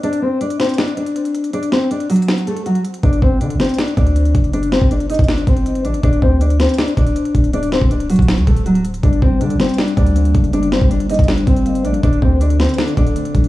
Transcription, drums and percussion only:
0.03 closed hi-hat
0.13 closed hi-hat
0.41 closed hi-hat
0.50 closed hi-hat
0.60 snare, closed hi-hat
0.64 closed hi-hat
0.69 closed hi-hat
0.74 closed hi-hat
0.78 snare, closed hi-hat
0.88 closed hi-hat
0.97 closed hi-hat
1.06 closed hi-hat
1.16 closed hi-hat
1.25 closed hi-hat
1.35 closed hi-hat
1.44 closed hi-hat
1.53 closed hi-hat
1.63 closed hi-hat
1.72 snare
1.91 closed hi-hat
2.00 closed hi-hat
2.10 closed hi-hat, open hi-hat
2.16 closed hi-hat
2.22 closed hi-hat
2.28 snare, closed hi-hat
2.38 closed hi-hat
2.47 closed hi-hat
2.57 closed hi-hat
2.66 closed hi-hat
2.75 closed hi-hat
2.85 closed hi-hat
2.94 closed hi-hat
3.03 kick, closed hi-hat
3.13 closed hi-hat
3.22 kick
3.41 closed hi-hat
3.50 closed hi-hat
3.60 snare, closed hi-hat
3.64 closed hi-hat
3.69 closed hi-hat
3.74 closed hi-hat
3.78 snare, closed hi-hat
3.88 closed hi-hat
3.97 kick, closed hi-hat
4.07 closed hi-hat
4.16 closed hi-hat
4.25 closed hi-hat
4.35 kick, closed hi-hat
4.44 closed hi-hat
4.53 closed hi-hat
4.63 closed hi-hat
4.72 snare
4.82 kick
4.91 closed hi-hat
5.00 closed hi-hat
5.10 closed hi-hat, open hi-hat
5.14 closed hi-hat
5.19 kick, closed hi-hat
5.24 closed hi-hat
5.28 snare, closed hi-hat
5.38 closed hi-hat
5.47 kick, closed hi-hat
5.57 closed hi-hat
5.66 closed hi-hat
5.75 closed hi-hat
5.85 closed hi-hat
5.94 closed hi-hat
6.03 kick, closed hi-hat
6.13 closed hi-hat
6.22 kick
6.41 closed hi-hat
6.50 closed hi-hat
6.60 snare, closed hi-hat
6.64 closed hi-hat
6.69 closed hi-hat
6.74 closed hi-hat
6.78 snare, closed hi-hat
6.88 closed hi-hat
6.97 kick, closed hi-hat
7.07 closed hi-hat
7.16 closed hi-hat
7.25 closed hi-hat
7.35 kick, closed hi-hat
7.44 closed hi-hat
7.53 closed hi-hat
7.63 closed hi-hat
7.72 snare
7.81 kick
7.91 closed hi-hat
8.00 closed hi-hat
8.10 closed hi-hat, open hi-hat
8.16 kick, closed hi-hat
8.22 closed hi-hat
8.28 snare, closed hi-hat
8.38 closed hi-hat
8.47 kick, closed hi-hat
8.57 closed hi-hat
8.66 closed hi-hat
8.75 closed hi-hat
8.85 closed hi-hat
8.94 closed hi-hat
9.03 kick, closed hi-hat
9.13 closed hi-hat
9.22 kick
9.41 closed hi-hat
9.50 closed hi-hat
9.60 snare, closed hi-hat
9.64 closed hi-hat
9.69 closed hi-hat
9.74 closed hi-hat
9.78 snare, closed hi-hat
9.88 closed hi-hat
9.97 kick, closed hi-hat
10.07 closed hi-hat
10.16 closed hi-hat
10.25 closed hi-hat
10.35 kick, closed hi-hat
10.44 closed hi-hat
10.53 closed hi-hat
10.63 closed hi-hat
10.72 snare
10.81 kick
10.91 closed hi-hat
11.00 closed hi-hat
11.10 closed hi-hat, open hi-hat
11.14 closed hi-hat
11.19 kick, closed hi-hat
11.24 closed hi-hat
11.28 snare, closed hi-hat
11.38 closed hi-hat
11.47 kick, closed hi-hat
11.56 closed hi-hat
11.66 closed hi-hat
11.75 closed hi-hat
11.85 closed hi-hat
11.94 closed hi-hat
12.03 kick, closed hi-hat
12.13 closed hi-hat
12.22 kick
12.41 closed hi-hat
12.50 closed hi-hat
12.60 snare, closed hi-hat
12.64 closed hi-hat
12.69 closed hi-hat
12.74 closed hi-hat
12.78 snare, closed hi-hat
12.88 closed hi-hat
12.97 kick, closed hi-hat
13.07 closed hi-hat
13.16 closed hi-hat
13.25 closed hi-hat
13.35 kick, closed hi-hat
13.44 closed hi-hat

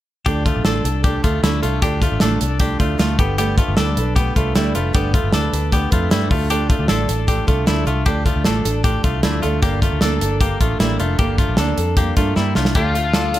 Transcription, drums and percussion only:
0.26 kick, closed hi-hat
0.46 kick, closed hi-hat
0.65 snare, closed hi-hat
0.85 closed hi-hat
1.04 kick, closed hi-hat
1.24 kick, closed hi-hat
1.44 snare, closed hi-hat
1.63 closed hi-hat
1.82 kick, closed hi-hat
2.02 kick, closed hi-hat
2.20 snare, closed hi-hat
2.41 closed hi-hat
2.60 kick, closed hi-hat
2.80 kick, closed hi-hat
2.99 snare, closed hi-hat
3.19 kick, closed hi-hat
3.38 closed hi-hat
3.58 kick, closed hi-hat
3.77 snare, closed hi-hat
3.97 closed hi-hat
4.16 kick, closed hi-hat
4.36 kick, closed hi-hat
4.56 snare, closed hi-hat
4.75 closed hi-hat
4.94 kick, closed hi-hat
5.14 kick, closed hi-hat
5.32 snare, closed hi-hat
5.54 closed hi-hat
5.72 kick, closed hi-hat
5.92 kick, closed hi-hat
6.11 snare, closed hi-hat
6.31 kick, open hi-hat
6.50 closed hi-hat
6.70 kick, closed hi-hat
6.88 snare, closed hi-hat
7.09 closed hi-hat
7.28 kick, closed hi-hat
7.48 kick, closed hi-hat
7.67 snare, closed hi-hat
7.87 closed hi-hat
8.06 kick, closed hi-hat
8.26 kick, closed hi-hat
8.45 snare, closed hi-hat
8.65 closed hi-hat
8.84 kick, closed hi-hat
9.04 kick, closed hi-hat
9.23 snare, closed hi-hat
9.43 closed hi-hat
9.62 kick, closed hi-hat
9.82 kick, closed hi-hat
10.01 snare, closed hi-hat
10.21 closed hi-hat
10.41 kick, closed hi-hat
10.61 kick, closed hi-hat
10.80 snare, closed hi-hat
11.00 closed hi-hat
11.19 kick, closed hi-hat
11.38 kick, closed hi-hat
11.57 snare, closed hi-hat
11.78 closed hi-hat
11.97 kick, closed hi-hat
12.17 kick, closed hi-hat
12.36 snare
12.55 snare
12.65 snare
12.75 kick, closed hi-hat
12.95 closed hi-hat
13.13 snare, closed hi-hat
13.34 closed hi-hat

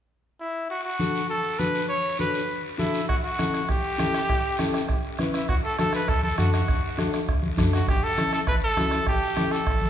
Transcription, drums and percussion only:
0.70 long guiro
1.00 high conga, short guiro
1.15 short guiro
1.30 long guiro
1.59 high conga, short guiro
1.75 short guiro
1.89 long guiro
2.19 high conga, short guiro
2.34 short guiro
2.49 long guiro
2.79 high conga, short guiro
2.94 short guiro
3.09 bombo low, bombo rim, long guiro
3.39 bombo rim, high conga, short guiro
3.54 bombo rim, short guiro
3.69 bombo low, bombo rim, long guiro
3.99 bombo rim, high conga, short guiro
4.14 bombo rim, short guiro
4.29 bombo low, bombo rim, long guiro
4.59 bombo rim, high conga, short guiro
4.74 bombo rim, short guiro
4.89 bombo low, bombo rim, long guiro
5.19 bombo rim, high conga, short guiro
5.34 bombo rim, short guiro
5.49 bombo low, bombo rim, long guiro
5.79 bombo rim, high conga, short guiro
5.93 bombo rim, short guiro
6.08 bombo low, bombo rim, long guiro
6.23 high conga
6.38 bombo rim, high conga, short guiro
6.54 bombo rim, short guiro
6.68 bombo low, bombo rim, long guiro
6.98 bombo rim, high conga, short guiro
7.13 bombo rim, short guiro
7.28 bombo low, bombo rim, long guiro
7.43 high conga
7.57 bombo low, bombo rim, high conga, short guiro
7.73 bombo rim, short guiro
7.88 bombo low, bombo rim, long guiro
8.17 bombo rim, high conga, short guiro
8.33 bombo rim, short guiro
8.47 bombo low, bombo rim, long guiro
8.77 bombo rim, high conga, short guiro
8.91 bombo rim, short guiro
9.07 bombo low, bombo rim, long guiro
9.37 bombo rim, high conga, short guiro
9.51 bombo rim, short guiro
9.67 bombo low, bombo rim
9.82 high conga

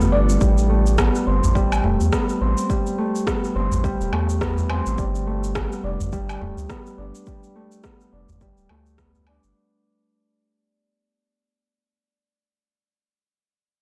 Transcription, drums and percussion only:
0.01 udu, shaker
0.29 shaker
0.41 kick, shaker
0.58 shaker
0.86 shaker
0.98 kick, cross-stick, low woodblock, shaker
1.15 shaker
1.43 udu, shaker
1.55 kick, shaker
1.72 low woodblock, shaker
1.84 udu
2.01 shaker
2.13 kick, cross-stick, shaker
2.29 shaker
2.58 shaker
2.70 kick, shaker
2.87 shaker
3.16 shaker
3.27 kick, cross-stick, shaker
3.44 shaker
3.72 udu, shaker
3.84 kick, shaker
4.01 shaker
4.13 low woodblock
4.29 shaker
4.41 kick, cross-stick, shaker
4.58 udu, shaker
4.70 low woodblock
4.86 shaker
4.98 kick, shaker
5.15 shaker
5.44 shaker
5.55 kick, cross-stick, low woodblock, shaker
5.72 shaker
6.00 udu, shaker
6.13 kick, shaker
6.29 low woodblock, shaker
6.42 udu
6.58 shaker
6.70 kick, cross-stick, shaker
6.86 shaker
7.15 shaker
7.27 kick, shaker
7.44 shaker
7.72 shaker
7.84 kick, cross-stick, shaker
8.01 shaker
8.29 udu, shaker
8.41 kick, shaker
8.58 shaker
8.69 low woodblock
8.86 shaker
8.98 kick, cross-stick, shaker
9.15 udu, shaker
9.27 low woodblock
9.44 shaker

